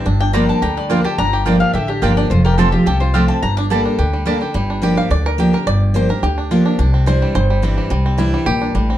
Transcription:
<<
  \new Staff \with { instrumentName = "Mandolin" } { \time 4/4 \key g \dorian \tempo 4 = 214 r8 g''8 bes''8 a''8 bes''8 d''8 f''8 a''8 | bes''4. f''8 e''8 g'8 bes'8 d''8 | c''8 bes'8 a'8 g'8 a'8 c''8 f''8 a''8 | bes''8 d'''8 r2. |
r1 | r1 | r1 | r1 | }
  \new Staff \with { instrumentName = "Mandolin" } { \time 4/4 \key g \dorian r4 <bes f' d'' g''>8 r4. <bes f' d'' g''>8 r8 | r4 <bes f' d'' g''>8 r4. <bes f' d'' g''>8 r8 | r4 <c' f' c'' a''>8 r4. <c' f' c'' a''>8 r8 | r4 <bes g' d'' a''>8 r4. <bes g' d'' a''>8 r8 |
r1 | r1 | r1 | r1 | }
  \new Staff \with { instrumentName = "Five-string banjo" } { \time 4/4 \key g \dorian << { r1 | r1 | r1 | r1 |
r4. f''8 d''8 bes'4 bes'8 | d''4 c''8 bes'8 g'4 f'8 r8 | r4 c''4 c''4 r4 | r4 e'4 g'4 r4 | } \\ { d'8 d'8 g8 d'8 g'8 g8 d'8 g'8 | d'8 g'8 d'8 d'8 g'8 d'8 g'8 d'8 | f'8 g'8 c'8 f'8 g'8 f'8 g'8 c'8 | d'8 d'8 g8 d'8 g'8 g8 d'8 g'8 |
g8 d'8 g'4. r8 g'4~ | g'8 r2 d'4 d'8 | d'8 c'4 g4 g8 c'8 g8 | g8 c'4 g4 d'8 g8 c'8 | } >> }
  \new Staff \with { instrumentName = "Steel-string acoustic guitar" } { \time 4/4 \key g \dorian << { r4 <f bes d' g'>4 r4 <f bes d' g'>8 <d' g'>8 | r4 <f bes d' g'>4 r4 <f bes d' g'>4 | r4 <f a c' f'>8 <c' f'>8 r4 <f a c' f'>4 | r4 <g bes d' a'>4 r4 <g bes d' a'>8 <d' a'>8 |
r4 <f bes d' g'>4 r4 <f bes d' g'>8 <d' g'>8 | r4 <f bes d' g'>8 <d' g'>8 r4 <f bes d' g'>4 | r4 <e g d' e'>4 r4 <e g d' e'>4 | r4 <e g d' e'>4 r2 | } \\ { g,2 d2 | g,2 d2 | f,2 r2 | g,2 d2 |
g,2 d2 | g,2 d2 | c2 g,2 | c2 bes,4 a,4 | } >> }
  \new Staff \with { instrumentName = "Upright bass" } { \clef bass \time 4/4 \key g \dorian g,,2 d,2 | g,,2 a,,4 g,,4 | f,,2 c,2 | g,,2 d,2 |
g,,2 d,2 | g,,2 d,2 | c,2 g,,2 | c,2 bes,,4 a,,4 | }
>>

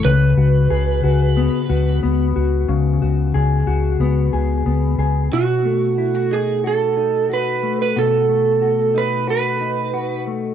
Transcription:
<<
  \new Staff \with { instrumentName = "Electric slide guitar" } { \time 4/4 \key b \mixolydian \tempo 4 = 91 b'2. r4 | r1 | fis'4. gis'8 a'4 b'8. b'16 | a'4. b'8 b'4. r8 | }
  \new Staff \with { instrumentName = "Clean electric guitar" } { \time 4/4 \key b \mixolydian cis8 fis'8 gis'8 fis'8 b8 fis'8 b8 fis'8 | cis8 fis'8 gis'8 fis'8 b8 gis'8 b8 gis'8 | <b, fis'>8 a8 e'16 fis'16 dis'8 fis'8 dis'8 fis'8 a8 | <b, fis'>8 a8 fis'8 dis'8 fis'8 dis'8 fis'8 a8 | }
  \new Staff \with { instrumentName = "Fingered electric bass" } { \clef bass \time 4/4 \key b \mixolydian cis,8 cis,8 cis,8 cis,8. r16 cis,8 cis,8 cis,8 | cis,8 cis,8 cis,8 cis,8 cis,8 cis,8 cis,8 cis,8 | r1 | r1 | }
>>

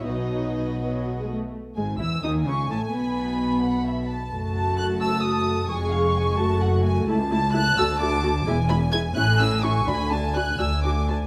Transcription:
<<
  \new Staff \with { instrumentName = "Violin section" } { \time 6/8 \key e \major \tempo 4. = 86 dis''2~ dis''8 r8 | r8 gis''8 e'''8 dis'''8 cis'''8 a''8 | b''2~ b''8 r8 | r8 a''8 fis'''8 e'''8 dis'''4 |
cis'''2~ cis'''8 r8 | \key a \major r8 a''8 fis'''8 e'''8 d'''4 | r8 b''8 gis'''8 fis'''8 e'''8 cis'''8 | b''8 a''8 fis'''8 e'''8 d'''8 a''8 | }
  \new Staff \with { instrumentName = "Violin section" } { \time 6/8 \key e \major <fis' b'>2~ <fis' b'>8 r8 | r4. gis''4.~ | gis''4. fis''8 e''8 a''8~ | a''2. |
gis''8 eis''8 gis''8 a''8 fis''8 gis''8 | \key a \major a''2. | gis''2.~ | gis''2. | }
  \new Staff \with { instrumentName = "Viola section" } { \time 6/8 \key e \major <fis dis'>4. fis8. gis16 a8 | r8 gis8 e'8 dis'8 cis'8 a8 | b2~ b8 r8 | <a fis'>2. |
<gis gis'>4. <a fis'>4. | \key a \major <a e'>8 <a e'>8 <a e'>8 <a fis'>8 <a fis'>8 <a fis'>8 | <gis e'>8 <gis e'>8 <gis e'>8 <cis' e'>8 <cis' e'>8 <cis' e'>8 | <d' fis'>8 <d' fis'>8 <d' fis'>8 <d' fis'>8 <d' fis'>8 <d' fis'>8 | }
  \new Staff \with { instrumentName = "Cello section" } { \clef bass \time 6/8 \key e \major b,2~ b,8 r8 | r8 gis,8 e8 dis8 cis8 a,8 | b,2~ b,8 r8 | fis,2. |
eis,4. fis,4. | \key a \major cis,4. d,4. | e,4. a,4. | d,4. d,4. | }
  \new Staff \with { instrumentName = "Double bass section" } { \clef bass \time 6/8 \key e \major b,,2~ b,,8 r8 | r8 gis,,8 e,8 dis,8 cis,8 a,,8 | b,,2~ b,,8 r8 | fis,,2. |
eis,,4. fis,,4. | \key a \major cis,4. d,4. | e,,4. a,,4. | d,4. d,4. | }
>>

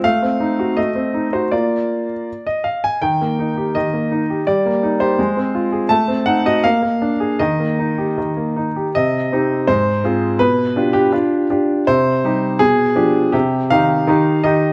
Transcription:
\new Staff \with { instrumentName = "Grand piano" } { \time 2/4 \key ees \major \tempo 4 = 82 << { f''4 ees''8. c''16 | d''4~ d''16 ees''16 f''16 aes''16 | g''4 ees''4 | d''8. c''4~ c''16 |
a''8 fis''16 ees''16 f''4 | ees''4. r8 | \key c \minor ees''4 c''4 | b'8. g'4~ g'16 |
c''4 aes'4 | g'8 f''4 ees''8 | } \\ { a16 c'16 ees'16 fis'16 a16 c'16 ees'16 fis'16 | <bes f'>4 r4 | ees16 bes16 ees'16 g'16 ees16 bes16 ees'16 g'16 | g16 bes16 ees'16 g'16 aes16 c'16 f'16 aes'16 |
a16 c'16 ees'16 fis'16 bes16 bes16 d'16 aes'16 | ees16 bes16 ees'16 g'16 ees16 bes16 ees'16 g'16 | c8 <c' ees' g'>8 aes,8 <c' f' aes'>8 | b,8 <d' f' g'>8 <d' f' g'>8 <d' f' g'>8 |
c8 <g ees' g'>8 b,8 <f d' g'>8 | c8 <ees ees' g'>8 <ees ees' g'>8 <ees ees' g'>8 | } >> }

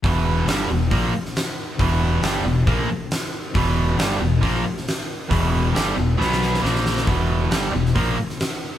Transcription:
<<
  \new Staff \with { instrumentName = "Distorted electric guitar" } { \clef bass \time 4/4 \key e \minor \tempo 4 = 136 <e, b, e>4 <g, d g>8 <e, b,>8 <ais, f ais>8 r4. | <e, b, e>4 <g, d g>8 <e, b,>8 <ais, f ais>8 r4. | <e, b, e>4 <g, d g>8 <e, b,>8 <ais, f ais>8 r4. | <e, b, e>4 <g, d g>8 <e, b,>8 <b, fis b>4 <ais, eis ais>4 |
<e, b, e>4 <g, d g>8 <e, b,>8 <ais, f ais>8 r4. | }
  \new Staff \with { instrumentName = "Distorted electric guitar" } { \clef bass \time 4/4 \key e \minor <e, b, e>4 <g, d g>8 <e, b,>8 <ais, f ais>8 r4. | <e, b, e>4 <g, d g>8 <e, b,>8 <ais, f ais>8 r4. | <e, b, e>4 <g, d g>8 <e, b,>8 <ais, f ais>8 r4. | <e, b, e>4 <g, d g>8 <e, b,>8 <b, fis b>4 <ais, eis ais>4 |
<e, b, e>4 <g, d g>8 <e, b,>8 <ais, f ais>8 r4. | }
  \new Staff \with { instrumentName = "Fingered electric bass" } { \clef bass \time 4/4 \key e \minor e,,4 g,,8 e,,8 ais,,8 r4. | e,,4 g,,8 e,,8 ais,,8 r4. | e,,4 g,,8 e,,8 ais,,8 r4. | e,,4 g,,8 e,,8 b,,4 ais,,4 |
e,,4 g,,8 e,,8 ais,,8 r4. | }
  \new DrumStaff \with { instrumentName = "Drums" } \drummode { \time 4/4 <hho bd>4 <hho sn>4 <hho bd>8. sn16 <hho sn>4 | <hho bd>4 <hho sn>4 <hho bd>4 <hho sn>4 | <hho bd>4 <hho sn>4 <hho bd>8. sn16 <hho sn>4 | <hho bd>4 <hho sn>4 sn16 sn16 sn16 sn16 sn16 sn16 sn16 sn16 |
<hho bd>4 <hho sn>8. sn16 <hho bd>8. sn16 <hho sn>4 | }
>>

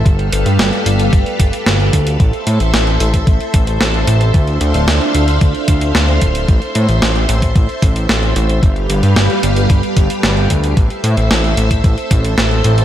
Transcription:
<<
  \new Staff \with { instrumentName = "String machine" } { \time 4/4 \key a \minor \tempo 4 = 112 << { <g g' b' f''>1 | <c'' e''>1 | <d' e'' f''>1 | e''1 |
<g g' b' f''>1 | <c'' e''>1 | } \\ { a'1~ | a'1~ | a'1~ | a'1~ |
a'1 | a'1 | } >> }
  \new Staff \with { instrumentName = "Analog synth bass" } { \clef bass \time 4/4 \key a \minor g,,8 g,,16 g,16 g,,16 r16 g,,8 g,,16 r16 g,,16 r16 g,,8 d,8 | a,,16 r16 a,16 a,,16 a,,8 a,,8 a,,16 r16 a,,8 a,,8 a,,8 | d,8 d,16 d,,16 d,16 r16 d,8 d,16 r16 d,8 d,8 d,,8 | a,,16 r16 a,16 a,,16 a,,8 a,,8 a,,16 r16 a,,8 a,,8 a,,8 |
g,,8 g,,16 g,16 g,,16 r16 g,,8 g,,16 r16 g,,16 r16 g,,8 d,8 | a,,16 r16 a,16 a,,16 a,,8 a,,8 a,,16 r16 a,,8 a,,8 a,,8 | }
  \new DrumStaff \with { instrumentName = "Drums" } \drummode { \time 4/4 <hh bd>16 hh16 hh16 hh16 <hh sn>16 hh16 hh16 hh16 <hh bd>16 hh16 <hh bd>16 hh16 <hh sn>16 hh16 <hh bd>16 hh16 | <hh bd>16 hh16 hh16 hh16 <hh sn>16 hh16 hh16 <hh bd>16 <hh bd>16 hh16 <hh bd>16 hh16 <hh sn>16 hh16 hh16 hh16 | <hh bd>16 hh16 hh16 hh16 <hh sn>16 hh16 hh16 hh16 <hh bd>16 hh16 <hh bd>16 hh16 <hh sn>16 hh16 <hh bd>16 hh16 | <hh bd>16 hh16 hh16 hh16 <hh sn>16 hh16 hh16 <hh bd>16 <hh bd>16 hh16 <hh bd>16 hh16 <hh sn>16 hh16 hh16 hh16 |
<hh bd>16 hh16 hh16 hh16 <hh sn>16 hh16 hh16 hh16 <hh bd>16 hh16 <hh bd>16 hh16 <hh sn>16 hh16 <hh bd>16 hh16 | <hh bd>16 hh16 hh16 hh16 <hh sn>16 hh16 hh16 <hh bd>16 <hh bd>16 hh16 <hh bd>16 hh16 <hh sn>16 hh16 hh16 hh16 | }
>>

